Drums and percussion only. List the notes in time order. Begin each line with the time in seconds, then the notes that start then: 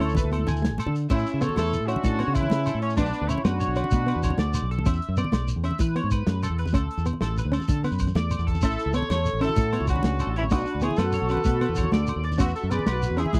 0.01 closed hi-hat, low agogo
0.09 shekere
0.15 kick, closed hi-hat, low conga, shekere
0.33 closed hi-hat, low agogo
0.39 high conga
0.47 closed hi-hat, low conga, low agogo, shekere
0.57 shekere
0.65 snare, closed hi-hat
0.78 closed hi-hat, high conga, low agogo, shekere
0.86 low conga
0.95 closed hi-hat, shekere
1.10 kick, crash, high conga, low agogo, shekere
1.18 shekere
1.27 closed hi-hat, shekere
1.41 closed hi-hat, low conga, low agogo, shekere
1.49 low conga
1.56 snare, closed hi-hat, high conga, low agogo, shekere
1.73 closed hi-hat, shekere
1.88 closed hi-hat, low agogo, shekere
1.96 low conga
2.04 kick, closed hi-hat, high conga, shekere
2.19 closed hi-hat, low agogo
2.28 low conga
2.35 kick, closed hi-hat, low agogo, shekere
2.43 low conga
2.50 snare, closed hi-hat, high conga
2.66 closed hi-hat, low conga, low agogo, shekere
2.82 closed hi-hat
2.90 shekere
2.97 kick, closed hi-hat, high conga, low agogo, shekere
3.06 shekere
3.13 closed hi-hat, shekere
3.29 closed hi-hat, low conga, low agogo, shekere
3.38 low conga
3.45 snare, closed hi-hat, high conga, low agogo, shekere
3.61 closed hi-hat, shekere
3.76 closed hi-hat, low agogo, shekere
3.84 low conga
3.91 kick, closed hi-hat, high conga, shekere
4.08 closed hi-hat, low agogo
4.15 low conga
4.23 kick, snare, closed hi-hat, low agogo, shekere
4.30 low conga
4.38 snare, closed hi-hat, high conga
4.54 closed hi-hat, low conga, low agogo, shekere
4.71 closed hi-hat
4.79 low conga
4.86 kick, closed hi-hat, high conga, low agogo, shekere
4.93 shekere
5.02 closed hi-hat
5.17 closed hi-hat, low agogo, shekere
5.24 low conga
5.32 snare, closed hi-hat, high conga, low agogo, shekere
5.48 closed hi-hat, shekere
5.64 closed hi-hat, low agogo, shekere
5.71 low conga
5.79 kick, closed hi-hat, high conga, shekere
5.96 closed hi-hat, low agogo
6.03 low conga
6.11 kick, closed hi-hat, low agogo, shekere
6.27 snare, closed hi-hat, high conga
6.42 closed hi-hat, low conga, low agogo, shekere
6.58 closed hi-hat
6.65 low conga, shekere
6.73 kick, closed hi-hat, high conga, low agogo, shekere
6.91 closed hi-hat
6.98 shekere
7.05 closed hi-hat, low conga, low agogo, shekere
7.13 low conga
7.22 snare, closed hi-hat, high conga, low agogo
7.37 closed hi-hat, shekere
7.53 closed hi-hat, low agogo, shekere
7.60 low conga, shekere
7.68 kick, closed hi-hat, high conga, shekere
7.77 low conga
7.84 closed hi-hat, low conga, low agogo, shekere
7.92 low conga, shekere
7.99 kick, closed hi-hat, low conga, low agogo, shekere
8.07 low conga, shekere
8.15 snare, closed hi-hat, high conga, shekere
8.31 closed hi-hat, low conga, low agogo, shekere
8.39 shekere
8.47 kick, closed hi-hat
8.55 low conga, shekere
8.62 kick, closed hi-hat, high conga, low agogo, shekere
8.70 shekere
8.79 closed hi-hat, shekere
8.93 closed hi-hat, low conga, low agogo, shekere
9.02 low conga
9.10 snare, closed hi-hat, high conga, low agogo, shekere
9.25 closed hi-hat, shekere
9.41 closed hi-hat, low agogo, shekere
9.49 low conga
9.56 kick, closed hi-hat, high conga, shekere
9.73 closed hi-hat, low agogo
9.80 low conga
9.87 kick, closed hi-hat, low agogo, shekere
9.96 low conga
10.03 snare, closed hi-hat, high conga
10.19 closed hi-hat, low conga, low agogo, shekere
10.36 closed hi-hat
10.44 low conga
10.50 kick, closed hi-hat, high conga, low agogo, shekere
10.58 shekere
10.66 closed hi-hat, shekere
10.81 closed hi-hat, low conga, low agogo, shekere
10.91 low conga
10.96 snare, closed hi-hat, high conga, low agogo, shekere
11.12 closed hi-hat, shekere
11.29 closed hi-hat, low agogo, shekere
11.37 low conga
11.44 kick, closed hi-hat, high conga, shekere
11.61 closed hi-hat, low agogo
11.69 low conga
11.75 kick, closed hi-hat, low agogo, shekere
11.84 low conga
11.92 snare, closed hi-hat, high conga
12.07 closed hi-hat, low conga, low agogo, shekere
12.24 closed hi-hat
12.32 low conga, shekere
12.39 kick, closed hi-hat, high conga, low agogo, shekere
12.48 shekere
12.56 closed hi-hat, shekere
12.71 closed hi-hat, low conga, low agogo, shekere
12.79 low conga
12.86 snare, closed hi-hat, high conga, low agogo, shekere
13.02 closed hi-hat, shekere
13.18 closed hi-hat, low agogo, shekere
13.26 low conga
13.33 kick, closed hi-hat, high conga, shekere